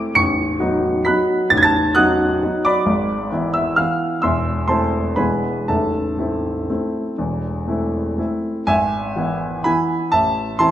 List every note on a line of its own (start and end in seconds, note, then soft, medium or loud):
0.00 0.12 A3 soft
0.00 0.11 C4 soft
0.00 0.12 E4 soft
0.00 0.12 D6 medium
0.00 0.15 D7 loud
0.15 0.58 A0 medium
0.15 0.58 A1 medium
0.15 1.01 C#6 medium
0.15 1.05 C#7 loud
0.59 1.01 F#3 soft
0.59 1.01 B3 soft
0.59 1.02 D#4 medium
1.05 1.47 F#3 soft
1.05 1.47 B3 soft
1.05 1.47 D#4 soft
1.05 1.48 B5 medium
1.05 1.48 F#6 medium
1.05 1.50 B6 medium
1.50 1.94 A0 medium
1.50 1.94 A1 medium
1.50 1.57 A6 loud
1.57 1.64 G#6 medium
1.63 1.94 A5 medium
1.63 1.95 A6 loud
1.95 2.38 F#3 soft
1.95 2.38 B3 soft
1.95 2.39 D#4 medium
1.95 2.61 F#5 medium
1.95 2.61 D#6 medium
1.95 2.65 F#6 loud
2.43 2.84 F#3 soft
2.43 2.84 B3 soft
2.43 2.84 D#4 soft
2.65 3.51 D5 medium
2.65 3.51 B5 medium
2.65 3.55 D6 medium
2.86 3.30 G#1 medium
2.86 3.30 G#2 soft
3.32 3.74 E3 soft
3.32 3.74 B3 soft
3.32 3.74 E4 soft
3.54 3.76 E5 medium
3.54 3.77 E6 medium
3.76 4.19 E3 soft
3.76 4.19 B3 soft
3.76 4.19 E4 soft
3.76 4.20 F5 medium
3.76 4.22 F6 medium
4.22 4.68 E1 soft
4.22 4.68 E2 medium
4.22 4.66 E5 medium
4.22 4.66 C6 medium
4.22 4.68 E6 medium
4.68 5.14 A3 soft
4.68 5.14 C4 soft
4.68 5.15 E4 soft
4.68 5.15 C5 medium
4.68 5.15 A5 medium
4.68 5.17 C6 medium
5.16 5.66 E1 soft
5.16 5.67 E2 soft
5.16 5.64 G#3 soft
5.16 5.64 B3 soft
5.16 5.65 E4 soft
5.16 5.64 B4 soft
5.16 5.65 G#5 medium
5.16 5.68 B5 medium
5.68 6.17 A0 soft
5.68 6.17 A1 soft
5.68 8.39 A4 soft
5.68 8.39 E5 soft
5.68 8.43 A5 medium
6.19 6.65 A3 soft
6.19 6.65 C4 soft
6.19 6.66 E4 soft
6.70 7.15 A3 soft
6.70 7.15 C4 soft
6.70 7.16 E4 soft
7.18 7.66 E1 soft
7.18 7.66 E2 soft
7.68 8.14 A3 soft
7.68 8.14 C4 soft
7.68 8.15 E4 soft
8.18 8.63 A3 soft
8.18 8.64 C4 soft
8.18 8.64 E4 soft
8.67 9.15 G#1 medium
8.67 9.62 E5 medium
8.67 9.64 G#5 medium
9.16 9.61 E3 soft
9.16 9.62 B3 soft
9.16 9.62 E4 soft
9.64 10.08 E3 soft
9.64 10.08 B3 soft
9.64 10.08 E4 soft
9.64 10.09 G#5 medium
9.64 10.12 B5 medium
10.12 10.58 A1 medium
10.12 10.56 E5 medium
10.12 10.58 A5 loud
10.59 10.71 E3 soft
10.59 10.71 C4 soft
10.59 10.71 E4 soft
10.59 10.71 A5 medium
10.59 10.71 C6 loud